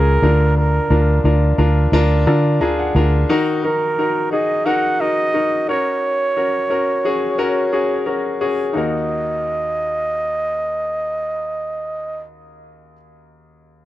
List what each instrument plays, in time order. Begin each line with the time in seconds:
Already playing: fingered electric bass C#2, grand piano C#4 F4 G#4 B4, trumpet A#4
0.22 fingered electric bass D2, grand piano D3 D4 F4 A#4
0.57 trumpet A#4
0.90 fingered electric bass D2, grand piano D4 F4 A#4
1.24 fingered electric bass D2, grand piano D4 F4 A#4
1.58 fingered electric bass D2, grand piano D4 F4 A#4
1.92 fingered electric bass D2, grand piano D4 F4 A#4
2.27 fingered electric bass D3, grand piano D4 F4 A#4
2.60 fingered electric bass D2, grand piano D4 F4 G#4 A#5
2.79 grand piano F#5
2.95 fingered electric bass D2, grand piano D4 F4 A#4
3.29 grand piano D#3 D#4 F#4 A#4
3.64 grand piano D#4 F#4 A#4, trumpet A#4
3.98 grand piano D#4 F#4 A#4
4.32 grand piano D#4 F#4 G#4, trumpet D#5
4.66 grand piano D#4 F#4 A#4, trumpet F#5
5.00 grand piano D#4 F#4 A#4, trumpet D#5
5.34 grand piano D#4 F#4 A#4
5.68 grand piano C#4 F#4 A#4, trumpet C#5
6.37 grand piano C#4 F#4 A#4
6.70 grand piano C#4 F#4 A#4
7.05 grand piano C#4 F#4 G#4
7.38 grand piano C#4 F#4 A#4
7.72 grand piano C#4 F#4 G#4
8.06 grand piano C#4 F#4 A#4
8.41 grand piano C#4 F#4 G#4
8.73 grand piano D#2 D#4 F#4, trumpet D#5
8.77 grand piano A#4